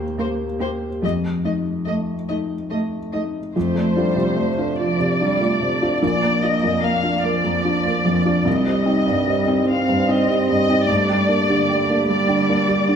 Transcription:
Already playing: D#2 A#3 G4
0.18 A#3 C5
0.59 A#3 G4 C5
1.02 F2 A3 D#5
1.44 A3 D#4 D#5
1.86 A3 D#5
2.29 A3 D#4 D#5
2.70 A3 D#5
3.12 A3 D#4 D#5
3.54 F2 A3 F4 C5
3.75 A3 D5
3.96 G3 D4 F4 A4
4.16 C3 F4
4.36 F3 A3 D5
4.58 D4 F4 A4
4.80 F3 F4 D5
5.00 C3 D5
5.20 G3 D4 F4
5.40 A3 F4
5.60 C3 A3 C5
5.81 D4 F4 C5
6.02 A#1 A#3 A#4 D5
6.22 A#3 A#5
6.42 D4 F4 D5 D#5
6.63 F2 A#4
6.83 A#3 F5 A#5
7.03 D4 F4 D5
7.22 F3 A#4 D5
7.44 F2 A#5
7.64 D4 F4
7.86 A#3 A#4
8.05 F2 F5
8.26 D4 F4 F5
8.45 C2 G3 C4 D#5
8.65 G3 C5
8.86 C4 D#4
9.08 G2 C4
9.27 G3 C5
9.48 C4 D#4
9.67 C4 F5
9.88 G2 C5
10.08 C4 D#4 D#5
10.28 G3 C4
10.48 G2 G4 D#5
10.69 C4 D#4 G4
10.88 G2 A3 G4 D5
11.09 G3 G5
11.29 A#3 D4 A#4
11.49 D3 G4
11.69 G3 G5
11.89 A#3 D4 A#4
12.08 G3 G4 D5
12.28 D3 G5
12.49 A#3 D4
12.67 G3 G4
12.88 D3 D5

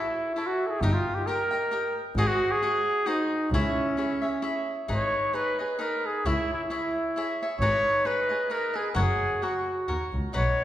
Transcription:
Already playing: E4 A4 C#5 E5
0.36 E4 A4 C#5 E5
0.47 F#4
0.67 G#4 A4
0.81 G1 D#4 G4 A#4 D#5 G5
0.93 F4
1.14 G4
1.27 G4 A#4 D#5 G5
1.51 A#4 D#5 G5
1.71 G4 A#4 D#5 G5
2.15 G#1 F#4 G#4 C5 D#5
2.27 F#4
2.51 G#4
2.62 F#4 G#4 C5 D#5
3.06 D#4 F#4 G#4 C5 D#5
3.51 C#2 C#4 E4 G#4 C#5
3.55 E5
3.97 E4 G#4 C#5 E5
4.22 G#4 C#5 E5
4.42 E4 G#4 C#5 E5
4.88 G#1 D#4 G#4 B4 C#5 D#5
5.33 D#4 G#4 B4 D#5
5.59 G#4 B4 D#5
5.79 D#4 G#4 A#4 B4 D#5
6.06 G#4
6.25 C#2 E4 G#4 C#5 E5
6.54 E4
6.70 E4 G#4 C#5 E5
7.16 E4 G#4 C#5 E5
7.43 G#4 C#5 E5
7.59 G#1 D#4 G#4 B4 C#5 D#5
8.05 D#4 G#4 B4 D#5
8.29 G#4 B4 D#5
8.50 D#4 G#4 A#4 B4 D#5
8.74 G#4 B4 D#5
8.91 F#4 A#4
8.96 F#1 G#4 C#5 F#5
9.42 F#4 A#4 C#5 F#5
9.88 D#2 F#4 A#4 C#5 F#5
10.13 C#2
10.33 B1 D#4 B4 C#5 D#5 F#5

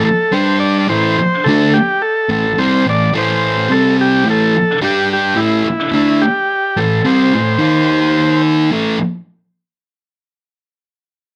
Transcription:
0.04 A4, muted distorted electric guitar stroke
0.32 G3 D4 G4 C5
0.60 D5
0.79 D5
0.88 A2 E3 A3 C5
1.19 muted distorted electric guitar stroke
1.44 D3 A3 A4
1.48 D4
1.73 G4
2.02 A4
2.29 A2 E3 A4
2.58 C3 G3 C4 C5
2.85 A2 E3
2.90 D5
3.13 A2 E3 A3
3.18 C5
3.69 C3 G3 C4 A4
4.01 G4
4.25 A2 E3 A3
4.30 A4
4.54 muted distorted electric guitar stroke
4.81 G3 D4 G4
5.13 G4
5.35 A2 E3 A3 E4
5.65 muted distorted electric guitar stroke
5.92 D3 A3 D4 E4
6.21 G4
6.77 A2 E3 A4
7.05 C3 G3 C4 C5
7.34 A2 E3
7.59 D#3 A#3 D#4
8.71 A2 E3 A3

